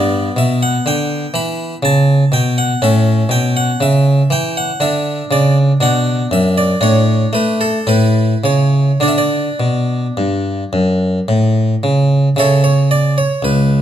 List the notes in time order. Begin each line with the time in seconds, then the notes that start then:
Already playing: G2 B3 D5
0.36 B2 E5
0.63 F#5
0.86 D3 G5
1.34 E3 B5
1.83 C#3 A5
2.32 B2 G5
2.58 F#5
2.82 A2 C#4 E5
3.29 B2 G5
3.57 F#5
3.80 C#3 E5
4.30 E3 G5
4.57 F#5
4.80 D3 D4 E5
5.31 C#3 D5
5.80 B2 D4 F#5
6.31 F#2 E5
6.58 D5
6.81 A2 D4 C#5
7.33 A3 B4
7.61 A4
7.87 A2 E4 B4
8.44 C#3 C#5
9.00 D3 D4 D5
9.08 E5
9.18 D5
9.60 B2
10.17 G2
10.73 F#2
11.28 A2
11.83 C#3
12.36 C#3 A4 C#5 E5
12.64 C#5
12.91 D5
13.18 C#5
13.43 C#2 B4